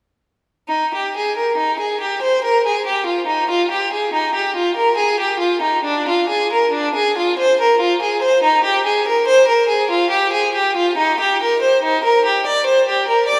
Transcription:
0.68 D#4
0.94 G4
1.17 G#4
1.37 A#4
1.57 D#4
1.79 G#4
2.01 G4
2.22 C5
2.44 A#4
2.66 G#4
2.86 G4
3.06 F4
3.27 D#4
3.50 F4
3.71 G4
3.93 G#4
4.13 D#4
4.35 G4
4.56 F4
4.76 A#4
4.97 G#4
5.20 G4
5.40 F4
5.62 D#4
5.84 D4
6.08 F4
6.29 G#4
6.53 A#4
6.73 D4
6.95 G#4
7.18 F4
7.39 C5
7.61 A#4
7.81 F4
8.02 G#4
8.22 C5
8.43 D#4
8.64 G4
8.86 G#4
9.08 A#4
9.27 C5
9.48 A#4
9.69 G#4
9.91 F4
10.10 G4
10.33 G#4
10.55 G4
10.77 F4
10.97 D#4
11.20 G4
11.43 A#4
11.62 C5
11.83 D#4
12.04 A#4
12.25 G4
12.46 D5
12.66 C5
12.89 G4
13.08 A#4
13.28 D5

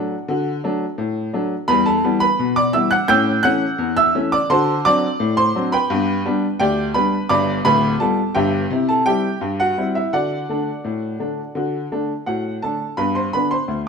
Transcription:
Already playing: F#3 A3 D4 F#4 D5 F#5
0.28 D3 F#4
0.64 F#3 A3 D4
0.98 A2
1.33 F#3 A3 D4
1.68 E2 G3 B4 B5
1.86 A4 A5
2.04 E3 G3 B3
2.20 B4 B5
2.39 B2
2.56 D5 D6
2.73 E3 G3 B3 E5 E6
2.91 F#5 F#6
3.08 A2 C#4 G5 E6 G6
3.43 E3 A3 C#4 F#5 F#6
3.78 E2
3.97 E5 E6
4.15 E3 A3 C#4
4.32 D5 D6
4.50 D3 F#4 C5 A5 C6
4.85 F#3 C4 D4 D5 D6
5.20 A2
5.37 C5 C6
5.55 F#3 C4 D4
5.72 B4 G5 B5
5.90 G2 B3
6.25 G3 B3 D4
6.60 D2 G4 D5 G5
6.94 G3 B3 D4 B4 B5
7.29 G1 G2 D5 B5 D6
7.65 D1 D2 B4 B5
8.00 G3 B3 F4 A4 A5
8.35 G1 G2 G4 E5 G5
8.70 C3 E4
8.89 A4 A5
9.06 G3 C4 E4 G4 G5
9.41 G2
9.60 F#4 F#5
9.78 G3 C4 E4
9.95 E4 E5
10.13 D3 F#4 D5 F#5
10.49 D3 A3 D4
10.85 A2
11.19 D3 A3 D4
11.55 D3 F#4
11.92 D3 A3 D4
12.26 A2 F#4 F#5
12.62 D3 A3 D4 A4 A5
12.97 G2 B3 B4 B5
13.15 C5 C6
13.33 D3 B3 D4 B4 B5
13.51 C5 C6
13.68 D2

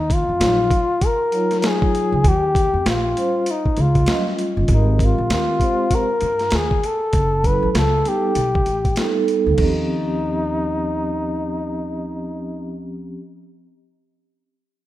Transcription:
Already playing: D#2 D#4
0.10 F4, kick, closed hi-hat
0.29 F2
0.39 A#1 F#3 D#4 F4 C#5, snare, closed hi-hat
0.71 kick, closed hi-hat
1.01 kick, closed hi-hat
1.06 A#4
1.31 F#3 D#4 F4 C#5, closed hi-hat
1.51 snare, closed hi-hat
1.59 A#4, closed hi-hat
1.64 G#4, snare
1.82 kick
1.95 closed hi-hat
2.12 C#2
2.24 D#2 G4, kick, closed hi-hat
2.55 kick, closed hi-hat
2.74 F2
2.86 A#1, snare, closed hi-hat
2.90 F4
3.15 G3 C#4 F4 C5, closed hi-hat
3.46 closed hi-hat
3.51 D#4
3.66 kick
3.77 C#2, closed hi-hat
3.81 F4
3.95 kick, closed hi-hat
4.06 F#3 C#4 F4 D#5, snare, closed hi-hat
4.13 G3
4.27 snare
4.39 closed hi-hat
4.57 G1
4.68 G#1 G#3 C4 G4 A#4, kick, closed hi-hat
4.74 D#4
4.99 kick, closed hi-hat
5.04 F4
5.18 A#1
5.30 D#2, snare, closed hi-hat
5.59 G#3 C4 G4 C5, kick, closed hi-hat
5.91 kick, closed hi-hat
5.95 A#4
6.21 G2, closed hi-hat
6.39 snare, closed hi-hat
6.51 D#2, snare, closed hi-hat
6.56 G#4
6.71 kick
6.84 A4, closed hi-hat
7.13 F#1, kick, closed hi-hat
7.43 F#3 C#4 E4 A4 B4, kick, closed hi-hat
7.63 A1
7.71 C#2 B4, snare, closed hi-hat
7.77 A4
8.04 G3 B3 D#4 A4, closed hi-hat
8.08 G4
8.35 B1, closed hi-hat
8.55 kick
8.66 A1, closed hi-hat
8.85 kick, closed hi-hat
8.96 G3 B3 D#4 A4, snare, closed hi-hat
9.28 closed hi-hat
9.46 D2
9.54 F3 C4
9.58 D#2 C#4 D#4, kick, crash
9.64 G4

